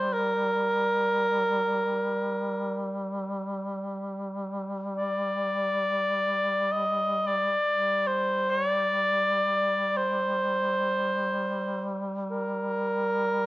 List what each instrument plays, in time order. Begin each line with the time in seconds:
Already playing: duduk G3, cor anglais C5
0.13 cor anglais A#4
4.97 cor anglais D5
6.72 cor anglais D#5
7.27 cor anglais D5
7.73 duduk G3
8.07 cor anglais C5
8.50 cor anglais C#5
8.69 cor anglais D5
9.97 cor anglais C5
12.31 cor anglais A#4